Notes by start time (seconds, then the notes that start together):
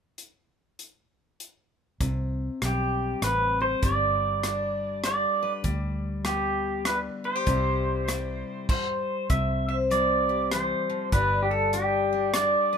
0.18 closed hi-hat
0.79 closed hi-hat
1.40 closed hi-hat
2.00 C2 C3, kick, closed hi-hat
2.62 B1 G3 G4, cross-stick, closed hi-hat
3.22 A1 C3 B4, cross-stick, closed hi-hat
3.61 G4 C5
3.83 G1 G3 D5, kick, closed hi-hat
4.43 D4, cross-stick, closed hi-hat
5.04 D3 D5, cross-stick, closed hi-hat
5.43 B4
5.64 D2 G3, kick, closed hi-hat
6.25 B3 G4, cross-stick, closed hi-hat
6.85 D3 B4, cross-stick, closed hi-hat
7.24 E4 C5
7.35 G4
7.46 C2 C3 G3 E4 G4, kick, closed hi-hat
8.08 G3, cross-stick, closed hi-hat
8.69 C5, kick, crash
9.30 C2 C3 E5, kick, closed hi-hat
9.69 C5 E5
9.91 G3 D5, closed hi-hat
10.29 G4
10.52 E3 C5, cross-stick, closed hi-hat
10.90 F3
11.12 G1 G3 D4 G4 B4, kick, closed hi-hat
11.43 G4
11.51 G4 A4
11.73 D4 G4, closed hi-hat
12.13 D4
12.34 D4 D5, cross-stick, closed hi-hat
12.73 B4